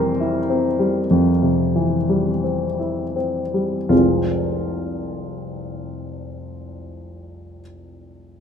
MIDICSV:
0, 0, Header, 1, 2, 480
1, 0, Start_track
1, 0, Key_signature, -4, "minor"
1, 0, Tempo, 1195219
1, 444, Tempo, 1333333
1, 924, Tempo, 1470588
1, 1404, Time_signature, 4, 2, 24, 8
1, 1404, Tempo, 1385681
1, 2960, End_track
2, 0, Start_track
2, 0, Title_t, "Grand piano"
2, 0, Program_c, 0, 0
2, 0, Control_c, 0, 64, 127
2, 0, Note_on_c, 0, 41, 53
2, 0, Note_on_c, 0, 48, 36
2, 0, Note_on_c, 0, 52, 37
2, 0, Note_on_c, 0, 55, 44
2, 0, Note_on_c, 0, 60, 41
2, 0, Note_on_c, 0, 70, 52
2, 0, Note_on_c, 0, 72, 58
2, 82, Note_on_c, 0, 64, 39
2, 152, Note_off_c, 0, 60, 0
2, 200, Note_on_c, 0, 60, 38
2, 271, Note_off_c, 0, 64, 0
2, 319, Note_off_c, 0, 55, 0
2, 319, Note_on_c, 0, 55, 34
2, 394, Note_off_c, 0, 60, 0
2, 426, Note_off_c, 0, 41, 0
2, 444, Note_on_c, 0, 41, 43
2, 512, Note_off_c, 0, 55, 0
2, 559, Note_off_c, 0, 48, 0
2, 559, Note_on_c, 0, 48, 31
2, 678, Note_off_c, 0, 52, 0
2, 678, Note_on_c, 0, 52, 33
2, 751, Note_off_c, 0, 48, 0
2, 799, Note_on_c, 0, 55, 30
2, 874, Note_off_c, 0, 52, 0
2, 923, Note_on_c, 0, 60, 33
2, 993, Note_off_c, 0, 55, 0
2, 1040, Note_on_c, 0, 64, 28
2, 1112, Note_off_c, 0, 60, 0
2, 1159, Note_on_c, 0, 60, 34
2, 1160, Note_off_c, 0, 70, 0
2, 1237, Note_off_c, 0, 64, 0
2, 1284, Note_on_c, 0, 55, 28
2, 1356, Note_off_c, 0, 60, 0
2, 1391, Note_off_c, 0, 41, 0
2, 1397, Note_on_c, 0, 29, 37
2, 1398, Note_on_c, 0, 65, 40
2, 1399, Note_on_c, 0, 36, 29
2, 1400, Note_on_c, 0, 53, 30
2, 1401, Note_on_c, 0, 56, 30
2, 1401, Note_on_c, 0, 60, 31
2, 1403, Note_off_c, 0, 55, 0
2, 1412, Control_c, 0, 64, 0
2, 1416, Note_off_c, 0, 72, 0
2, 1505, Control_c, 0, 64, 127
2, 2682, Note_off_c, 0, 29, 0
2, 2683, Note_off_c, 0, 36, 0
2, 2683, Note_off_c, 0, 65, 0
2, 2684, Note_off_c, 0, 53, 0
2, 2685, Note_off_c, 0, 56, 0
2, 2686, Note_off_c, 0, 60, 0
2, 2960, End_track
0, 0, End_of_file